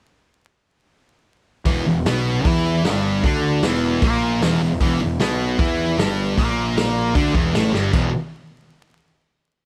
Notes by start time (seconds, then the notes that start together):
1.65 E1 E2 E3, kick, open hi-hat
1.84 E1 E2
2.04 B1 B2 B3, snare, open hi-hat
2.45 E2 E3 E4, kick, open hi-hat
2.84 G1 G2 G3, snare, open hi-hat
3.23 D2 D3 D4, kick, open hi-hat
3.62 E1 E2 E3, snare, open hi-hat
4.02 A#1 A#2 A#3, kick, open hi-hat
4.41 E1 E2 E3, snare, open hi-hat
4.60 E1 E2
4.80 E1 E2 E3, kick, open hi-hat
5.00 E1 E2
5.20 B1 B2 B3, snare, open hi-hat
5.59 E2 E3 E4, kick, open hi-hat
5.97 G1 G2 G3, snare, open hi-hat
6.37 A#1 A#2 A#3, kick, open hi-hat
6.77 snare, open hi-hat
7.15 D2 D3 D4, kick, open hi-hat
7.34 E1 E2 E3, kick
7.53 A1 A2 A3, snare, open hi-hat
7.73 G1 G2 G3, snare
7.92 E1 E2 B2 E3, kick, crash